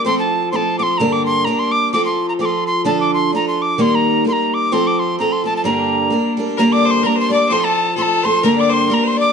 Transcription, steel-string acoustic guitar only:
X:1
M:2/4
L:1/8
Q:"Swing" 1/4=129
K:Gm
V:1 name="Steel-string acoustic guitar"
[F,CFA]2 [F,CFA] [F,CFA] | [G,,D,G,B,DB]2 [G,B,DB]2 | [F,CFA]2 [F,CFA]2 | [D,F,DFA]2 [F,DFA]2 |
[E,G,B,EB]2 [G,B,EB]2 | [F,CFA]2 [F,CFA] [F,CFA] | [G,,D,G,B,DB]2 [G,B,DB] [G,B,DB] | [G,,D,G,B,DB]2 [G,B,DB] [G,B,DB] |
[F,CFA]2 [F,CFA] [F,CFA] | [G,,D,G,B,DB]2 [G,B,DB]2 |]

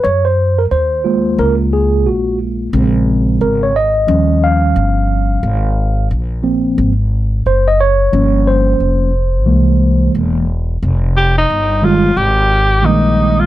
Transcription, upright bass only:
X:1
M:4/4
L:1/8
Q:"Swing 16ths" 1/4=89
K:Fm
V:1 name="Upright bass" clef=bass
_G,,2 E,,2 D,,2 B,,,2 | B,,,2 A,,,2 E,,2 G,,,2 | A,,,2 B,,,2 A,,,2 _G,,,2 | G,,,2 F,,,2 C,,2 =E,,,2 |
F,,,2 G,,,2 A,,,2 B,,,2 |]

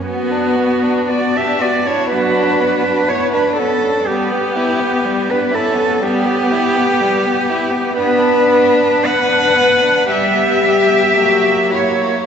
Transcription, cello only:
X:1
M:4/4
L:1/16
Q:1/4=60
K:Bm
V:1 name="Cello"
F4 d e d c B4 c B A2 | G4- G B A2 G8 | B4 f4 e6 c2 |]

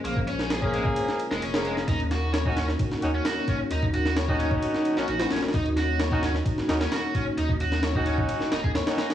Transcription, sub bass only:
X:1
M:4/4
L:1/16
Q:1/4=131
K:Ebdor
V:1 name="Sub bass" clef=bass
B,,,8 z3 F,,, F,,,4 | E,,8 z2 E,,2 z4 | E,,8 z3 B,,, B,,,2 E,,,2 | E,,8 z2 E,,2 z4 |
E,,8 z2 E,,, E,,2 z3 |]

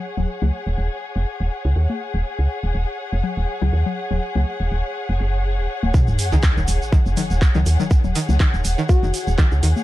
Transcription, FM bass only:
X:1
M:4/4
L:1/16
Q:"Swing 16ths" 1/4=122
K:Ebm
V:1 name="FM bass" clef=bass
z E,,, z D,, z E,,, E,,, z2 F,,, z E,,, z D,, E,, z | z E,,, z D,, z E,,, E,,, z2 F,,, z E,,, z D,, E,, z | z E,,, z D,, z E,,, E,,, z2 F,,, G,,,3 E,,, z E,,, | z E,,, z D,, z E,,, E,,, z2 F,,, z E,,, z D,, E,, z |
z E,,, z D,, z E,,, E,,, z2 F,,, z E,,, z D,, E,, z |]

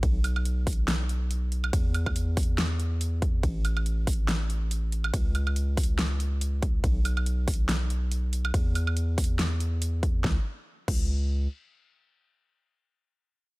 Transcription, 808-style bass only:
X:1
M:4/4
L:1/8
Q:"Swing 16ths" 1/4=141
K:E
V:1 name="808-style bass" clef=bass
B,,,8 | E,,8 | A,,,8 | C,,8 |
B,,,8 | E,,8 | C,, z2 C,,3 z2 | z8 |]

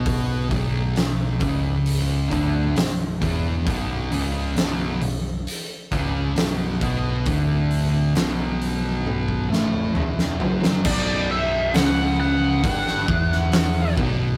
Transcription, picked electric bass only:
X:1
M:4/4
L:1/8
Q:1/4=67
K:Bm
V:1 name="Picked electric bass" clef=bass
B,,, B,,,,2 C,,,2 D,,, B,,,, E,,, | B,,,, C,,, B,,,, B,,,, z C,,, B,,,, B,,, | D,,,2 B,,,,3 A,,, E,,, F,,, | B,,,,2 C,,,2 G,,, E,,,2 B,,,, |]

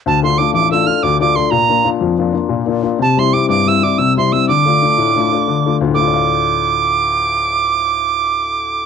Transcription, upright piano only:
X:1
M:9/8
L:1/8
Q:3/8=122
K:Dm
V:1 name="Upright piano"
D,, [A,DF] [A,DF] A,,, [A,DF] [A,DF] D,, [A,DF] [A,DF] | B,, [B,DF] [B,DF] F,, [B,DF] [B,DF] B,, [B,DF] [B,DF] | C, [G,CE] [G,CE] G,, [G,CE] [G,CE] C, [G,CE] [G,CE] | D, [A,DF] [A,DF] A,, [A,DF] [A,DF] D, [A,DF] [A,DF] |
[D,,A,,A,Fdf]8- [D,,A,,A,Fdf]- | [D,,A,,A,Fdf]8- [D,,A,,A,Fdf] |]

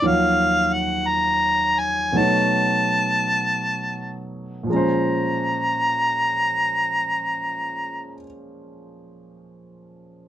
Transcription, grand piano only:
X:1
M:4/4
L:1/8
Q:"Swing" 1/4=43
K:Bbm
V:1 name="Grand piano" clef=bass
[E,,E,F,G,d]4 [=B,,^F,=A,^D_d]4 | [B,,F,A,Dc]8 |]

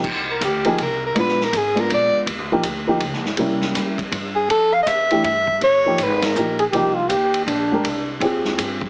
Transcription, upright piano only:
X:1
M:3/4
L:1/8
Q:"Swing" 1/4=162
K:Gphr
V:1 name="Upright piano"
z3 [F,B,EG] z2 | [A,_CDF] z2 [A,CDF]3 | z [F,B,EG] z [F,B,EG] z2 | [G,B,_D=E]3 z3 |
z3 [=E,=A,DG] z2 | z [F,^A,^DG] z2 [F,A,DG] z | [F,B,EG] z4 [A,DGB] | z2 [CFGA]3 z |]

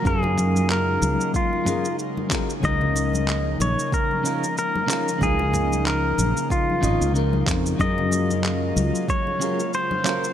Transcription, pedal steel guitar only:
X:1
M:4/4
L:1/8
Q:"Swing 16ths" 1/4=93
K:Db
V:1 name="Pedal steel guitar"
A2 B2 F2 z2 | e3 d B2 B2 | A2 B2 F2 z2 | e4 d2 c2 |]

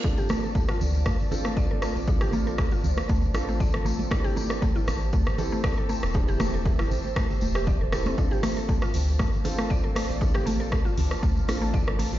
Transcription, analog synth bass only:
X:1
M:4/4
L:1/16
Q:"Swing 16ths" 1/4=118
K:Dm
V:1 name="Analog synth bass" clef=bass
z6 D,,2 G,, z6 A,,,- | A,,,4- A,,, z D,, z D,, z A,,,4- A,,, z | z6 A,,,2 D,, z6 E,,,- | E,,,4- E,,, z A,,, z A,,, z E,,,4- E,,, z |
z6 D,,2 G,, z6 A,,,- | A,,,4- A,,, z D,, z D,, z A,,,4- A,,, z |]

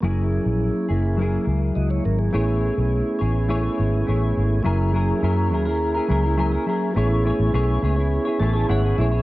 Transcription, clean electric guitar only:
X:1
M:4/4
L:1/16
Q:1/4=104
K:F#mix
V:1 name="Clean electric guitar"
[F,A,EG]6 [A,EG]2 [F,A,EG]8 | [=A,EGc]6 [EGc]2 [A,EGc]4 [A,EGc]4 | [F,EGA]2 [F,EGA]2 [F,EGA]2 [F,EGA] [EGA]2 [EGA] [F,EGA] [EGA] [F,EGA] [EGA] [F,EGA]2 | [=A,EGc]2 [A,EGc]2 [A,EGc]2 [A,EGc] [EGc]2 [EGc] [A,EGc] [EGc] [A,EGc] [EGc] [A,EGc] [EGc] |]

